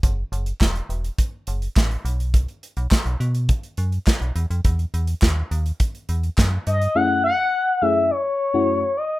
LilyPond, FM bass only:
\new Staff \with { instrumentName = "FM bass" } { \clef bass \time 4/4 \key fis \dorian \tempo 4 = 104 fis,,8 fis,,8 e,,8 e,,8 r8 fis,,8 a,,8 b,,8~ | b,,8 r16 b,,16 r16 b,,16 b,8. r16 fis,8 r16 b,,16 e,16 eis,16 | e,8 e,8 dis,8 dis,8 r8 e,8 fis,8 g,8 | r1 | }